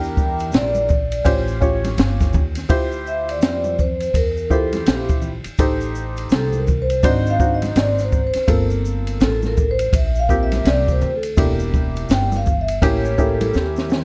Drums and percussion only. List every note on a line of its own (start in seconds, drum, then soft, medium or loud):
0.03 shaker soft
0.17 kick medium
0.17 high conga soft
0.17 shaker soft
0.39 ride soft
0.39 shaker soft
0.52 snare loud
0.52 hi-hat pedal soft
0.52 ride medium
0.52 high conga soft
0.52 shaker medium
0.75 high conga medium
0.75 shaker soft
0.89 kick medium
0.89 low conga medium
0.89 shaker medium
1.12 ride medium
1.12 shaker soft
1.25 kick loud
1.25 ride medium
1.25 shaker medium
1.48 shaker soft
1.62 kick medium
1.62 shaker soft
1.84 snare soft
1.84 ride medium
1.84 high conga medium
1.84 shaker soft
1.97 snare loud
1.97 hi-hat pedal soft
1.97 ride medium
1.97 shaker medium
2.20 kick medium
2.20 snare soft
2.20 high conga medium
2.20 shaker soft
2.33 kick medium
2.33 low conga medium
2.33 shaker soft
2.55 snare soft
2.55 ride medium
2.55 shaker soft
2.69 kick loud
2.69 ride medium
2.69 shaker medium
2.92 shaker soft
3.07 shaker soft
3.29 ride medium
3.29 shaker soft
3.41 snare loud
3.41 hi-hat pedal soft
3.41 ride medium
3.41 shaker medium
3.64 high conga medium
3.64 shaker soft
3.79 kick medium
3.79 low conga medium
3.79 shaker medium
4.00 ride soft
4.00 shaker soft
4.14 kick medium
4.14 ride medium
4.14 shaker medium
4.37 shaker soft
4.51 kick medium
4.51 shaker soft
4.73 snare soft
4.73 ride soft
4.73 high conga medium
4.73 shaker soft
4.86 snare loud
4.86 hi-hat pedal medium
4.86 ride medium
4.86 shaker medium
5.09 kick medium
5.09 shaker soft
5.22 low conga medium
5.22 shaker soft
5.44 ride medium
5.44 shaker soft
5.58 kick loud
5.58 ride medium
5.58 shaker medium
5.81 shaker soft
5.95 shaker soft
6.17 ride soft
6.17 shaker soft
6.30 snare loud
6.30 hi-hat pedal soft
6.30 ride medium
6.30 shaker medium
6.53 high conga medium
6.53 shaker soft
6.67 kick medium
6.67 low conga medium
6.67 shaker soft
6.90 ride medium
6.90 shaker soft
7.03 kick loud
7.03 ride medium
7.03 shaker medium
7.26 shaker soft
7.40 kick medium
7.40 shaker soft
7.62 snare soft
7.62 ride soft
7.62 high conga medium
7.62 shaker soft
7.76 snare loud
7.76 hi-hat pedal medium
7.76 ride medium
7.76 shaker medium
7.98 snare soft
7.98 shaker soft
8.12 kick medium
8.12 low conga medium
8.12 shaker soft
8.33 snare soft
8.33 ride medium
8.33 shaker medium
8.48 kick loud
8.48 ride medium
8.48 shaker medium
8.70 shaker soft
8.85 shaker medium
9.07 ride medium
9.07 shaker soft
9.20 snare loud
9.20 hi-hat pedal soft
9.20 ride medium
9.20 shaker medium
9.43 snare soft
9.43 high conga medium
9.43 shaker soft
9.57 kick medium
9.57 low conga medium
9.57 shaker medium
9.79 ride medium
9.79 shaker soft
9.93 kick loud
9.93 ride medium
9.93 shaker medium
10.15 shaker soft
10.29 kick medium
10.29 shaker soft
10.52 snare soft
10.52 ride medium
10.52 high conga medium
10.52 shaker medium
10.65 snare loud
10.65 hi-hat pedal soft
10.65 ride medium
10.65 shaker medium
10.88 kick medium
10.88 shaker soft
11.01 low conga medium
11.01 shaker soft
11.23 ride medium
11.23 shaker soft
11.37 kick loud
11.37 ride medium
11.37 shaker medium
11.59 shaker soft
11.74 kick medium
11.74 high conga soft
11.74 shaker soft
11.96 ride soft
11.96 shaker soft
12.09 snare loud
12.09 hi-hat pedal soft
12.09 ride medium
12.09 high conga soft
12.09 shaker medium
12.32 snare soft
12.32 high conga medium
12.32 shaker soft
12.46 kick medium
12.46 low conga medium
12.46 shaker medium
12.68 ride medium
12.68 shaker soft
12.82 kick loud
12.82 ride medium
12.82 shaker medium
13.05 shaker soft
13.18 kick medium
13.18 shaker soft
13.41 ride medium
13.41 high conga medium
13.41 shaker medium
13.54 snare medium
13.54 shaker medium
13.76 snare medium
13.76 shaker soft
13.90 snare medium
13.90 low conga medium
13.90 shaker soft